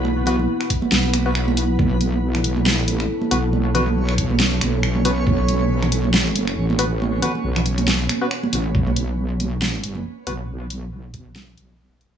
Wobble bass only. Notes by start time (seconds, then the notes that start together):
Already playing: B1
0.92 B1
1.79 B1
2.70 A#1
2.95 A1
3.31 B1
4.62 B1
5.27 B1
6.57 A1
7.44 B1
8.53 A1
8.75 B1
10.27 B1
11.57 B1